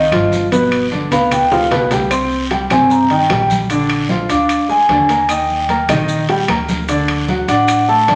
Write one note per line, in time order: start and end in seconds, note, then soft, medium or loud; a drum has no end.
0.00 0.29 D#5 medium
0.11 1.05 G1 loud
0.11 0.45 F3 medium
0.11 0.45 F4 medium
0.11 0.45 F5 medium
0.11 high conga medium
0.11 high timbale medium
0.11 short guiro medium
0.11 claves medium
0.11 maracas soft
0.32 high conga medium
0.32 short guiro medium
0.32 maracas medium
0.52 0.84 B2 medium
0.52 0.85 B3 medium
0.52 0.85 B4 medium
0.52 high conga medium
0.52 high timbale medium
0.52 long guiro medium
0.52 maracas medium
0.72 high timbale medium
0.72 claves medium
0.72 maracas soft
0.91 1.08 D3 medium
0.91 1.08 D4 medium
0.91 1.08 D5 medium
0.91 high conga medium
0.91 short guiro medium
0.91 maracas soft
1.11 1.67 D2 medium
1.11 1.44 B3 medium
1.11 1.44 B4 medium
1.11 1.31 F5 medium
1.11 1.45 B5 medium
1.11 low conga medium
1.11 high timbale medium
1.11 short guiro medium
1.11 maracas medium
1.31 1.51 G5 loud
1.31 low conga medium
1.31 high timbale medium
1.31 long guiro medium
1.31 claves medium
1.31 maracas medium
1.51 1.68 F3 medium
1.51 1.68 F4 medium
1.51 1.88 F5 medium
1.51 1.68 F5 medium
1.51 low conga medium
1.51 maracas soft
1.71 2.64 C2 medium
1.71 1.88 B2 medium
1.71 1.88 B3 medium
1.71 1.88 B4 medium
1.71 low conga loud
1.71 high timbale medium
1.71 low timbale medium
1.71 short guiro medium
1.71 maracas soft
1.91 2.08 G3 medium
1.91 2.08 G4 medium
1.91 2.08 G5 medium
1.91 low conga medium
1.91 high timbale medium
1.91 short guiro medium
1.91 maracas medium
2.11 2.44 C4 medium
2.11 2.44 C5 medium
2.11 2.44 C6 medium
2.11 high conga soft
2.11 high timbale medium
2.11 long guiro medium
2.11 claves medium
2.11 maracas medium
2.31 high conga soft
2.31 maracas soft
2.50 2.67 G3 medium
2.50 2.67 G4 medium
2.50 2.68 G5 medium
2.50 high conga medium
2.50 high timbale medium
2.50 short guiro medium
2.50 maracas soft
2.70 3.26 G2 medium
2.70 3.04 C3 medium
2.70 3.04 C4 medium
2.70 3.04 C5 medium
2.70 2.90 G#5 medium
2.70 high conga loud
2.70 low conga medium
2.70 high timbale medium
2.70 short guiro medium
2.70 claves medium
2.70 maracas medium
2.90 3.10 A#5 loud
2.90 high conga soft
2.90 long guiro medium
2.90 maracas medium
3.10 3.27 D#3 medium
3.10 3.27 D#4 medium
3.10 3.27 D#5 medium
3.10 3.48 G5 medium
3.10 high conga soft
3.10 high timbale medium
3.10 maracas soft
3.29 4.23 A#1 loud
3.29 3.63 G3 medium
3.29 3.63 G4 medium
3.29 3.63 G5 medium
3.29 high conga medium
3.29 high timbale medium
3.29 low timbale medium
3.29 short guiro medium
3.29 claves medium
3.29 maracas soft
3.50 high conga medium
3.50 short guiro medium
3.50 maracas medium
3.70 4.03 D3 medium
3.70 4.03 D4 medium
3.70 4.03 D5 medium
3.70 high timbale medium
3.70 long guiro medium
3.70 maracas medium
3.89 high conga soft
3.89 high timbale medium
3.89 claves medium
3.89 maracas soft
4.09 4.26 F3 medium
4.09 4.26 F4 medium
4.09 4.27 F5 medium
4.09 high conga loud
4.09 short guiro medium
4.09 maracas soft
4.29 4.85 D2 medium
4.29 4.62 D4 medium
4.29 4.63 D5 medium
4.29 4.67 F5 medium
4.29 4.63 D6 medium
4.29 high timbale medium
4.29 short guiro medium
4.29 maracas medium
4.49 high conga soft
4.49 high timbale medium
4.49 long guiro medium
4.49 claves medium
4.49 maracas medium
4.69 4.86 G#3 medium
4.69 4.86 G#4 medium
4.69 5.25 G#5 loud
4.69 4.86 G#5 medium
4.69 high conga soft
4.69 maracas soft
4.89 5.83 D#2 loud
4.89 5.06 D3 medium
4.89 5.06 D4 medium
4.89 5.06 D5 medium
4.89 high conga medium
4.89 high timbale medium
4.89 low timbale medium
4.89 short guiro medium
4.89 maracas soft
5.09 5.26 A#3 medium
5.09 5.26 A#4 medium
5.09 5.26 A#5 medium
5.09 high timbale medium
5.09 short guiro medium
5.09 maracas medium
5.29 5.62 D#4 medium
5.29 5.62 D#5 medium
5.29 5.85 G5 medium
5.29 5.62 D#6 medium
5.29 high conga soft
5.29 high timbale medium
5.29 long guiro medium
5.29 claves medium
5.29 maracas medium
5.49 high conga soft
5.49 maracas soft
5.69 5.86 A#3 medium
5.69 5.86 A#4 medium
5.69 5.86 A#5 medium
5.69 high conga medium
5.69 high timbale medium
5.69 short guiro medium
5.69 maracas soft
5.88 6.45 A#1 medium
5.88 6.22 D#3 medium
5.88 6.22 D#4 medium
5.88 6.22 D#5 medium
5.88 high conga medium
5.88 low conga medium
5.88 high timbale medium
5.88 short guiro medium
5.88 claves medium
5.88 maracas medium
6.09 high conga soft
6.09 long guiro medium
6.09 maracas medium
6.29 6.46 G3 medium
6.29 6.46 G4 medium
6.29 6.46 G5 medium
6.29 high conga soft
6.29 high timbale medium
6.29 maracas soft
6.48 7.42 D2 loud
6.48 6.82 A#3 medium
6.48 6.82 A#4 medium
6.48 6.82 A#5 medium
6.48 high conga medium
6.48 high timbale medium
6.48 low timbale medium
6.48 short guiro medium
6.48 claves medium
6.48 maracas soft
6.68 high conga medium
6.68 short guiro medium
6.68 maracas medium
6.88 7.21 D3 medium
6.88 7.22 D4 medium
6.88 7.22 D5 medium
6.88 high conga soft
6.88 high timbale medium
6.88 long guiro medium
6.88 maracas medium
7.08 high conga soft
7.08 high timbale medium
7.08 claves medium
7.08 maracas soft
7.28 7.45 F#3 medium
7.28 7.45 F#4 medium
7.28 7.46 F#5 medium
7.28 high conga medium
7.28 short guiro medium
7.28 maracas soft
7.48 8.04 A1 medium
7.48 7.81 D4 medium
7.48 7.81 D5 medium
7.48 7.86 F#5 loud
7.48 7.82 D6 medium
7.48 high conga soft
7.48 high timbale medium
7.48 short guiro medium
7.48 maracas medium
7.68 high conga soft
7.68 high timbale medium
7.68 long guiro medium
7.68 claves medium
7.68 maracas medium
7.88 8.05 A3 medium
7.88 8.05 A4 medium
7.88 8.15 A5 medium
7.88 8.05 A5 medium
7.88 high conga soft
7.88 maracas soft
8.08 8.15 G1 loud
8.08 8.15 D3 medium
8.08 8.15 D4 medium
8.08 8.15 D5 medium
8.08 high conga medium
8.08 high timbale medium
8.08 low timbale medium
8.08 short guiro medium
8.08 maracas soft